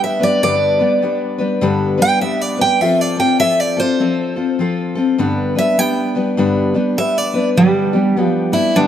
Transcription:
Already playing: G3 B3 D4 B4
0.04 E5
0.20 G3 B3 D4 B4 D5
0.43 G2 D3 G3 B3 D4 B4 D5
0.79 G3 B3 D4 B4
1.02 G3 B3 D4 B4
1.38 G3 B3 D4 B4
1.61 G2 D3 G3 B3 D4 B4
1.98 G3 B3 D4 B4
2.02 G5
2.21 G3 B3 D4 B4 E5
2.41 D5
2.57 G3 B3 D4 B4
2.61 G5
2.81 F3 C4 F4 A4 E5
3.01 D5
3.17 C4 F4 A4 G5
3.40 F3 C4 F4 A4 E5
3.60 D5
3.77 C4 F4 A4 C5
4.00 F3 C4 F4 A4
4.36 C4 F4 A4
4.59 F3 C4 F4 A4
4.95 C4 F4 A4
5.18 G2 D3 G3 B3 D4 B4
5.55 G3 B3 D4 B4 E5
5.78 G3 B3 D4 B4 G5
6.15 G3 B3 D4 B4
6.37 G2 D3 G3 B3 D4 B4
6.74 G3 B3 D4 B4
6.97 G3 B3 D4 B4 E5
7.18 D5
7.34 G3 B3 D4 B4
7.57 G2 D3 G3 B3 D4 G4
7.93 G3 B3 D4 G4
8.16 G3 B3 D4 G4
8.23 F3
8.52 G3 B3 D4 E4 G4
8.76 G2 D3 G3 B3 D4 G4

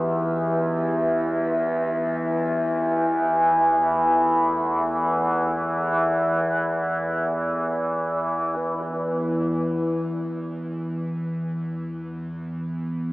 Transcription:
Already playing: E2 E3 E4 G4 B4 D#5
3.72 A4
8.58 E2 E3

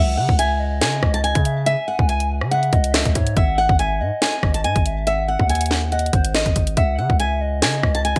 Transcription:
Already playing: C#2 E5 F#5
0.17 C#3 F#5
0.29 C#2, kick
0.39 E5 G#5, closed hi-hat
0.60 D#5
0.81 C#3 G#5, snare
1.03 C#2, kick, cross-stick
1.14 A5, closed hi-hat
1.24 G#5, closed hi-hat
1.35 C#3, kick, closed hi-hat
1.45 E5, closed hi-hat
1.66 E5 G#5, closed hi-hat
1.88 F#5
1.99 C#2, kick
2.09 G#5, closed hi-hat
2.20 closed hi-hat
2.41 C#3, cross-stick
2.51 E5 F#5, closed hi-hat
2.63 closed hi-hat
2.73 C#2 D#5, kick, closed hi-hat
2.84 closed hi-hat
2.94 E5, snare
3.05 C#2, kick, closed hi-hat
3.15 G#2 C#5, kick, closed hi-hat
3.27 closed hi-hat
3.36 G#1 E5 F#5, kick, closed hi-hat
3.58 F#5
3.69 G#1, kick
3.79 E5 G#5, closed hi-hat
4.01 G#2 D#5
4.22 G#5, snare
4.43 G#1, kick, cross-stick
4.54 A5, closed hi-hat
4.64 G#2 G#5, closed hi-hat
4.76 G#1, kick, closed hi-hat
4.86 E5, closed hi-hat
5.07 E5 F#5, closed hi-hat
5.28 F#5
5.40 D#2, kick
5.50 G#5, closed hi-hat
5.55 closed hi-hat
5.61 closed hi-hat
5.66 closed hi-hat
5.71 snare
5.92 D#5 F#5, closed hi-hat
5.99 closed hi-hat
6.06 closed hi-hat
6.13 G#1 C5, kick, closed hi-hat
6.25 closed hi-hat
6.35 D#5, snare
6.46 G#1, kick, closed hi-hat
6.56 G#1, kick, closed hi-hat
6.67 closed hi-hat
6.77 C#2 E5 F#5, kick, closed hi-hat
6.98 C#3 F#5
7.10 C#2, kick
7.20 E5 G#5, closed hi-hat
7.41 D#5
7.62 C#3 G#5, snare
7.83 C#2, kick, cross-stick
7.95 A5, closed hi-hat
8.05 G#5, closed hi-hat
8.16 C#3, kick, closed hi-hat

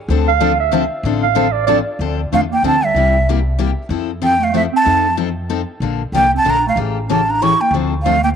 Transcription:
0.08 D2 D3 F3 C4 D4 A4
0.28 F5
0.40 D3 F3 C4 D4 A4
0.60 E5
0.72 D3 F3 C4 D4 A4
1.03 A1 D3 F3 C4 D4 A4
1.23 F5
1.35 D3 F3 C4 D4 A4
1.52 D5
1.67 D3 F3 C4 D4 A4 D5
1.99 D2 D3 F3 C4 D4 A4
2.32 E2 D3 F3 A3 C4 D4 A4 F5
2.51 A#3 G5
2.63 D2 D3 F3 C4 D4 A4 A5
2.83 G3 E5
2.95 C2 C3 G3 A#3 E4 G4
3.29 C3 G3 A#3 E4 G4
3.59 C3 G3 A#3 E4 G4
3.89 F2 F3 C4 E4 A4
4.20 F3 C4 E4 A4 G5
4.39 A3
4.44 F5
4.53 F3 A3 C4 E4 A4 E5
4.73 C4 A5
4.85 F2 F3 C4 D#4 A4
5.17 F3 C4 D#4 A4
5.49 F3 C4 D#4 A4
5.80 A#1 D3 F3 A#3 D4 A4
6.12 C2 D3 F3 A#3 D4 A4 G5
6.35 C4 A5
6.44 A#1 D3 F3 A#3 D4 A4
6.50 A#5
6.67 A3 F5
6.76 A1 C#3 E3 A3 C#4 G4
7.09 C#3 E3 A3 C#4 G4 A5
7.29 D4 A#5
7.41 C#3 E3 A3 C#4 E4 G4 C#6
7.61 A#3 G5
7.71 D2 D3 F3 C4 A4
7.75 D4
8.03 D3 F3 A3 C4 D4 A4 F5
8.24 A#3 G5

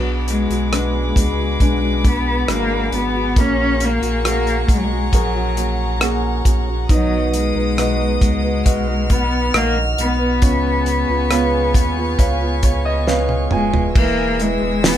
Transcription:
Already playing: B1 B2 B3 D4 F#4 G#4 F#5 B5 D6
0.28 G#3, closed hi-hat
0.49 B1 D4 F#4 G#4, closed hi-hat
0.71 G#3 B3 D4 F#4 G#4, cross-stick, closed hi-hat
1.15 C#2 G#3 B3 D4 F#4 G#4, kick, closed hi-hat
1.37 D4 F#4 G#4
1.60 B1 G#3 B3 D4, kick, closed hi-hat
1.82 D4 F#4 G#4
2.04 B3 D4 F#4 G#4, kick, closed hi-hat
2.48 G#1 F#3 G#3 D4 F#4 G#4, cross-stick, closed hi-hat
2.53 A#3
2.92 G#1 B3 D4 F#4 G#4, closed hi-hat
2.96 B3
3.14 D4 F#4 G#4
3.36 A#1 A#3 C#4 F#4 G#4 A#5 C#6, kick, closed hi-hat
3.40 C#4
3.80 closed hi-hat
3.85 A#3
4.02 A#1 C#4 F#4 G#4, closed hi-hat
4.24 A#3 C#4 F#4 G#4 A#4, cross-stick, closed hi-hat
4.47 closed hi-hat
4.68 B1 A#3 C#4 G#4, kick, closed hi-hat
4.73 G#3
4.78 F#3
4.85 G#3
4.90 C#4 F#4 G#4
5.13 A#1 F#3 F#4 G#4 A#4, kick, closed hi-hat
5.34 C#4 F#4 G#4
5.55 A#3 C#4 F#4 G#4, closed hi-hat
6.01 A#3 C#4 F#4 G#4 A#4, cross-stick, closed hi-hat
6.45 A#1 A#3 C#4 F#4 G#4, kick, closed hi-hat
6.67 C#4 F#4 G#4
6.88 B1 B2 D#3 F#3 B3 D#4 B4 D#5 D#6, kick, closed hi-hat
7.34 G#3, closed hi-hat
7.55 B1 F#3 B3 D#4 B4
7.77 B2 D#3 F#3 B3 D#4 F#4 B4 D#5, cross-stick, closed hi-hat
8.20 C#2 F#3 G#3 B3 D#4 B4, kick, closed hi-hat
8.43 F#3 B3 D#4 B4
8.65 B1 F#4 B4 D#5 F6, kick, closed hi-hat
8.88 F#3 B3 D#4 B4
9.09 F#3 B3 D#4 B4, kick, closed hi-hat
9.54 A#1 D#3 F#3 A#3 D#4 F#4 D#5, cross-stick, closed hi-hat
9.97 B1 F#3 B3 D#4 B4, closed hi-hat
10.19 F#3 B3 D#4 B4
10.41 C#2 C#3 G#3 B3 C#4 F4 G#4 F5 G#5 C#6, kick, closed hi-hat
10.86 closed hi-hat
11.08 C#2 B3 F4 G#4
11.30 C#3 G#3 B3 F4 G#4 B4 C#5 F5, cross-stick, closed hi-hat
11.74 D#2 G#3 B3 F4, kick, closed hi-hat
11.97 B3 F4 G#4
12.19 C#2 B4 C#5 F5, kick, closed hi-hat
12.41 B3 F4 G#4
12.62 G#3 B3 F4 G#4 C#5, kick, closed hi-hat
12.85 D#5
13.07 C#3 G#3 B3 F4 G#4 B4 C#5 F5, snare
13.29 high tom
13.50 C#1 G#3 B3 F4 G#4 G#5, mid tom
13.54 G#3
13.72 B3 F4 G#4, floor tom
13.95 E1 E3 G#3 A#3 E4 G#4 G#5 E6, kick, crash
14.39 E3 G#3 B3 E4 G#4, hi-hat pedal, open hi-hat
14.61 E1 B3 E4 G#4
14.84 E3 G#3 B3 E4 G#4, snare, hi-hat pedal, open hi-hat

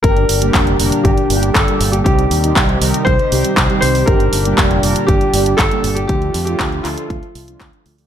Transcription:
0.03 G1 A#2 D3 G3 A#3 D4 G4 A#4, kick, closed hi-hat
0.17 closed hi-hat
0.29 G1, open hi-hat
0.42 G3 A#3 D4 G4, closed hi-hat
0.54 F1, kick, clap, closed hi-hat
0.67 closed hi-hat
0.80 F1 G3 A#3 D4 A#4, open hi-hat
0.92 closed hi-hat
1.03 G1 G4, kick, closed hi-hat
1.18 closed hi-hat
1.30 G1 G3 A#3 D4 G4, open hi-hat
1.43 closed hi-hat
1.54 G1 A4, kick, clap, closed hi-hat
1.68 G3 A#3 D4 G4, closed hi-hat
1.80 G1, open hi-hat
1.92 G4, closed hi-hat
2.04 C2 C3 D#3 G3 C4 D#4 G4, kick, closed hi-hat
2.19 closed hi-hat
2.31 D#2, open hi-hat
2.44 G3 C4 D#4 G4, closed hi-hat
2.56 C2, kick, clap, closed hi-hat
2.69 closed hi-hat
2.81 C2 G3 C4 D#4 A#4, open hi-hat
2.94 closed hi-hat
3.05 C2 C5, kick, closed hi-hat
3.19 closed hi-hat
3.32 C2 G3 C4 D#4 G4, open hi-hat
3.45 closed hi-hat
3.57 C2, kick, clap, closed hi-hat
3.70 G3 C4 D#4 G4, closed hi-hat
3.81 C2 C5, open hi-hat
3.95 open hi-hat
4.06 G1 A#2 D3 G3 A#3 D4 G4 A#4, kick, closed hi-hat
4.20 closed hi-hat
4.33 G1, open hi-hat
4.45 G3 A#3 D4 G4, closed hi-hat
4.58 F1, kick, clap, closed hi-hat
4.71 closed hi-hat
4.83 F1 G3 A#3 D4 A#4, open hi-hat
4.96 closed hi-hat
5.07 G1 G4, kick, closed hi-hat
5.21 closed hi-hat
5.34 G1 G3 A#3 D4 G4, open hi-hat
5.46 closed hi-hat
5.57 G1 A4, kick, clap, closed hi-hat
5.71 G3 A#3 D4 G4, closed hi-hat
5.84 G1, open hi-hat
5.95 G4, closed hi-hat
6.07 D2 F3 A3 D4 F4 G4 A4, kick, closed hi-hat
6.22 closed hi-hat
6.34 F2, open hi-hat
6.45 F3 A3 D4 F4 G4, closed hi-hat
6.60 D2, kick, clap, closed hi-hat
6.72 closed hi-hat
6.83 D2 F3 A3 D4 F4 A4, clap, open hi-hat
6.98 closed hi-hat
7.08 D2 F4, kick, closed hi-hat
7.23 closed hi-hat
7.35 C2, open hi-hat
7.48 F3 A3 D4 F4, closed hi-hat
7.61 D2, kick, clap, closed hi-hat
7.73 F3 A3 F4, closed hi-hat
7.86 D2, open hi-hat
7.98 F3 A3 D4 G4, open hi-hat

